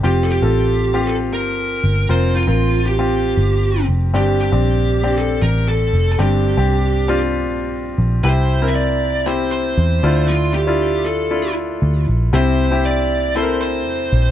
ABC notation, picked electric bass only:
X:1
M:4/4
L:1/16
Q:1/4=117
K:Cmix
V:1 name="Picked electric bass" clef=bass
F,,,3 A,,,6- A,,, G,,,4 G,,,2 | F,,,3 A,,,6- A,,, G,,,4 F,,,2 | G,,,3 B,,,6- B,,, A,,,4 F,,,2 | G,,,3 C,,6- C,, B,,,4 B,,,2 |
C,,12 E,,2 D,,2- | D,,12 D,,2 B,,,2 | C,,12 E,,2 B,,,2 |]